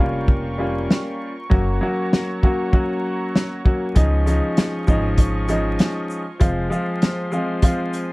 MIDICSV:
0, 0, Header, 1, 5, 480
1, 0, Start_track
1, 0, Tempo, 612245
1, 1184, Time_signature, 4, 2, 24, 8
1, 6371, End_track
2, 0, Start_track
2, 0, Title_t, "String section"
2, 0, Program_c, 0, 48
2, 0, Note_on_c, 0, 65, 75
2, 0, Note_on_c, 0, 70, 71
2, 0, Note_on_c, 0, 79, 72
2, 0, Note_on_c, 0, 85, 86
2, 1157, Note_off_c, 0, 65, 0
2, 1162, Note_on_c, 0, 66, 71
2, 1162, Note_on_c, 0, 73, 73
2, 1162, Note_on_c, 0, 82, 72
2, 1164, Note_off_c, 0, 79, 0
2, 1165, Note_off_c, 0, 70, 0
2, 3072, Note_off_c, 0, 85, 0
2, 3074, Note_off_c, 0, 66, 0
2, 3074, Note_off_c, 0, 73, 0
2, 3074, Note_off_c, 0, 82, 0
2, 3114, Note_on_c, 0, 75, 72
2, 3114, Note_on_c, 0, 85, 90
2, 3115, Note_on_c, 0, 65, 78
2, 3115, Note_on_c, 0, 80, 71
2, 5010, Note_off_c, 0, 75, 0
2, 5010, Note_off_c, 0, 80, 0
2, 5010, Note_off_c, 0, 85, 0
2, 5023, Note_on_c, 0, 72, 78
2, 5023, Note_on_c, 0, 84, 81
2, 5024, Note_on_c, 0, 80, 73
2, 6371, Note_off_c, 0, 65, 0
2, 6371, Note_off_c, 0, 72, 0
2, 6371, Note_off_c, 0, 80, 0
2, 6371, Note_off_c, 0, 84, 0
2, 6371, End_track
3, 0, Start_track
3, 0, Title_t, "Upright piano"
3, 0, Program_c, 1, 0
3, 0, Note_on_c, 1, 55, 90
3, 0, Note_on_c, 1, 58, 76
3, 0, Note_on_c, 1, 61, 85
3, 0, Note_on_c, 1, 65, 100
3, 435, Note_off_c, 1, 55, 0
3, 438, Note_off_c, 1, 58, 0
3, 440, Note_off_c, 1, 61, 0
3, 442, Note_off_c, 1, 65, 0
3, 457, Note_on_c, 1, 55, 96
3, 462, Note_on_c, 1, 58, 79
3, 466, Note_on_c, 1, 61, 86
3, 471, Note_on_c, 1, 65, 89
3, 1030, Note_off_c, 1, 55, 0
3, 1032, Note_off_c, 1, 58, 0
3, 1034, Note_off_c, 1, 61, 0
3, 1036, Note_off_c, 1, 65, 0
3, 1173, Note_on_c, 1, 54, 96
3, 1178, Note_on_c, 1, 58, 86
3, 1182, Note_on_c, 1, 61, 78
3, 1187, Note_on_c, 1, 66, 97
3, 1404, Note_off_c, 1, 54, 0
3, 1406, Note_off_c, 1, 58, 0
3, 1409, Note_off_c, 1, 61, 0
3, 1411, Note_off_c, 1, 66, 0
3, 1419, Note_on_c, 1, 54, 98
3, 1424, Note_on_c, 1, 58, 82
3, 1429, Note_on_c, 1, 61, 82
3, 1433, Note_on_c, 1, 66, 105
3, 1872, Note_off_c, 1, 54, 0
3, 1875, Note_off_c, 1, 58, 0
3, 1877, Note_off_c, 1, 61, 0
3, 1879, Note_off_c, 1, 66, 0
3, 1903, Note_on_c, 1, 54, 85
3, 1907, Note_on_c, 1, 58, 78
3, 1911, Note_on_c, 1, 61, 81
3, 1916, Note_on_c, 1, 66, 103
3, 2124, Note_off_c, 1, 54, 0
3, 2128, Note_off_c, 1, 58, 0
3, 2133, Note_off_c, 1, 61, 0
3, 2136, Note_off_c, 1, 66, 0
3, 2136, Note_on_c, 1, 54, 87
3, 2140, Note_on_c, 1, 58, 81
3, 2145, Note_on_c, 1, 61, 87
3, 2149, Note_on_c, 1, 66, 100
3, 2816, Note_off_c, 1, 54, 0
3, 2818, Note_off_c, 1, 58, 0
3, 2820, Note_off_c, 1, 61, 0
3, 2823, Note_off_c, 1, 66, 0
3, 2859, Note_on_c, 1, 54, 72
3, 2863, Note_on_c, 1, 58, 69
3, 2868, Note_on_c, 1, 61, 67
3, 2873, Note_on_c, 1, 66, 82
3, 3087, Note_off_c, 1, 54, 0
3, 3089, Note_off_c, 1, 58, 0
3, 3091, Note_off_c, 1, 61, 0
3, 3094, Note_off_c, 1, 66, 0
3, 3097, Note_on_c, 1, 53, 88
3, 3101, Note_on_c, 1, 56, 82
3, 3105, Note_on_c, 1, 61, 79
3, 3110, Note_on_c, 1, 63, 108
3, 3326, Note_off_c, 1, 53, 0
3, 3328, Note_off_c, 1, 56, 0
3, 3330, Note_off_c, 1, 61, 0
3, 3332, Note_off_c, 1, 63, 0
3, 3339, Note_on_c, 1, 53, 91
3, 3344, Note_on_c, 1, 56, 84
3, 3348, Note_on_c, 1, 61, 86
3, 3353, Note_on_c, 1, 63, 103
3, 3792, Note_off_c, 1, 53, 0
3, 3795, Note_off_c, 1, 56, 0
3, 3797, Note_off_c, 1, 61, 0
3, 3799, Note_off_c, 1, 63, 0
3, 3817, Note_on_c, 1, 53, 100
3, 3822, Note_on_c, 1, 56, 80
3, 3826, Note_on_c, 1, 61, 86
3, 3830, Note_on_c, 1, 63, 105
3, 4271, Note_off_c, 1, 53, 0
3, 4274, Note_off_c, 1, 56, 0
3, 4276, Note_off_c, 1, 61, 0
3, 4278, Note_off_c, 1, 63, 0
3, 4299, Note_on_c, 1, 53, 99
3, 4304, Note_on_c, 1, 56, 84
3, 4308, Note_on_c, 1, 61, 88
3, 4313, Note_on_c, 1, 63, 105
3, 4871, Note_off_c, 1, 53, 0
3, 4873, Note_off_c, 1, 56, 0
3, 4875, Note_off_c, 1, 61, 0
3, 4877, Note_off_c, 1, 63, 0
3, 5014, Note_on_c, 1, 53, 100
3, 5018, Note_on_c, 1, 56, 80
3, 5023, Note_on_c, 1, 60, 81
3, 5027, Note_on_c, 1, 65, 101
3, 5240, Note_off_c, 1, 53, 0
3, 5244, Note_off_c, 1, 56, 0
3, 5249, Note_off_c, 1, 60, 0
3, 5251, Note_off_c, 1, 65, 0
3, 5252, Note_on_c, 1, 53, 96
3, 5256, Note_on_c, 1, 56, 83
3, 5261, Note_on_c, 1, 60, 76
3, 5266, Note_on_c, 1, 65, 101
3, 5709, Note_off_c, 1, 53, 0
3, 5711, Note_off_c, 1, 56, 0
3, 5713, Note_off_c, 1, 60, 0
3, 5716, Note_off_c, 1, 65, 0
3, 5737, Note_on_c, 1, 53, 88
3, 5742, Note_on_c, 1, 56, 87
3, 5746, Note_on_c, 1, 60, 87
3, 5751, Note_on_c, 1, 65, 93
3, 5965, Note_off_c, 1, 53, 0
3, 5968, Note_off_c, 1, 56, 0
3, 5970, Note_off_c, 1, 60, 0
3, 5973, Note_off_c, 1, 65, 0
3, 5977, Note_on_c, 1, 53, 94
3, 5982, Note_on_c, 1, 56, 82
3, 5986, Note_on_c, 1, 60, 86
3, 5991, Note_on_c, 1, 65, 102
3, 6371, Note_off_c, 1, 53, 0
3, 6371, Note_off_c, 1, 56, 0
3, 6371, Note_off_c, 1, 60, 0
3, 6371, Note_off_c, 1, 65, 0
3, 6371, End_track
4, 0, Start_track
4, 0, Title_t, "Upright bass"
4, 0, Program_c, 2, 32
4, 0, Note_on_c, 2, 29, 93
4, 674, Note_off_c, 2, 29, 0
4, 1187, Note_on_c, 2, 30, 99
4, 1393, Note_off_c, 2, 30, 0
4, 3107, Note_on_c, 2, 37, 108
4, 3442, Note_off_c, 2, 37, 0
4, 3827, Note_on_c, 2, 32, 93
4, 4514, Note_off_c, 2, 32, 0
4, 5026, Note_on_c, 2, 29, 100
4, 5233, Note_off_c, 2, 29, 0
4, 6371, End_track
5, 0, Start_track
5, 0, Title_t, "Drums"
5, 221, Note_on_c, 9, 36, 90
5, 299, Note_off_c, 9, 36, 0
5, 710, Note_on_c, 9, 38, 118
5, 712, Note_on_c, 9, 40, 97
5, 789, Note_off_c, 9, 38, 0
5, 791, Note_off_c, 9, 40, 0
5, 1186, Note_on_c, 9, 36, 116
5, 1265, Note_off_c, 9, 36, 0
5, 1671, Note_on_c, 9, 38, 123
5, 1673, Note_on_c, 9, 40, 99
5, 1749, Note_off_c, 9, 38, 0
5, 1751, Note_off_c, 9, 40, 0
5, 1908, Note_on_c, 9, 36, 92
5, 1986, Note_off_c, 9, 36, 0
5, 2141, Note_on_c, 9, 36, 92
5, 2220, Note_off_c, 9, 36, 0
5, 2630, Note_on_c, 9, 38, 118
5, 2632, Note_on_c, 9, 40, 99
5, 2708, Note_off_c, 9, 38, 0
5, 2711, Note_off_c, 9, 40, 0
5, 2866, Note_on_c, 9, 36, 97
5, 2944, Note_off_c, 9, 36, 0
5, 3102, Note_on_c, 9, 42, 96
5, 3106, Note_on_c, 9, 36, 117
5, 3181, Note_off_c, 9, 42, 0
5, 3185, Note_off_c, 9, 36, 0
5, 3349, Note_on_c, 9, 42, 49
5, 3349, Note_on_c, 9, 82, 52
5, 3428, Note_off_c, 9, 42, 0
5, 3428, Note_off_c, 9, 82, 0
5, 3583, Note_on_c, 9, 42, 79
5, 3590, Note_on_c, 9, 38, 127
5, 3592, Note_on_c, 9, 40, 102
5, 3661, Note_off_c, 9, 42, 0
5, 3668, Note_off_c, 9, 38, 0
5, 3670, Note_off_c, 9, 40, 0
5, 3820, Note_on_c, 9, 82, 52
5, 3827, Note_on_c, 9, 36, 95
5, 3898, Note_off_c, 9, 82, 0
5, 3905, Note_off_c, 9, 36, 0
5, 4058, Note_on_c, 9, 42, 99
5, 4061, Note_on_c, 9, 36, 90
5, 4136, Note_off_c, 9, 42, 0
5, 4139, Note_off_c, 9, 36, 0
5, 4301, Note_on_c, 9, 42, 54
5, 4301, Note_on_c, 9, 82, 54
5, 4379, Note_off_c, 9, 42, 0
5, 4379, Note_off_c, 9, 82, 0
5, 4540, Note_on_c, 9, 42, 81
5, 4549, Note_on_c, 9, 38, 122
5, 4551, Note_on_c, 9, 40, 99
5, 4618, Note_off_c, 9, 42, 0
5, 4628, Note_off_c, 9, 38, 0
5, 4630, Note_off_c, 9, 40, 0
5, 4783, Note_on_c, 9, 82, 49
5, 4861, Note_off_c, 9, 82, 0
5, 5022, Note_on_c, 9, 42, 94
5, 5026, Note_on_c, 9, 36, 117
5, 5100, Note_off_c, 9, 42, 0
5, 5104, Note_off_c, 9, 36, 0
5, 5269, Note_on_c, 9, 82, 51
5, 5347, Note_off_c, 9, 82, 0
5, 5503, Note_on_c, 9, 42, 81
5, 5509, Note_on_c, 9, 38, 123
5, 5511, Note_on_c, 9, 40, 103
5, 5581, Note_off_c, 9, 42, 0
5, 5588, Note_off_c, 9, 38, 0
5, 5590, Note_off_c, 9, 40, 0
5, 5740, Note_on_c, 9, 82, 51
5, 5819, Note_off_c, 9, 82, 0
5, 5977, Note_on_c, 9, 42, 97
5, 5980, Note_on_c, 9, 36, 91
5, 6056, Note_off_c, 9, 42, 0
5, 6059, Note_off_c, 9, 36, 0
5, 6221, Note_on_c, 9, 42, 54
5, 6221, Note_on_c, 9, 82, 54
5, 6299, Note_off_c, 9, 42, 0
5, 6299, Note_off_c, 9, 82, 0
5, 6371, End_track
0, 0, End_of_file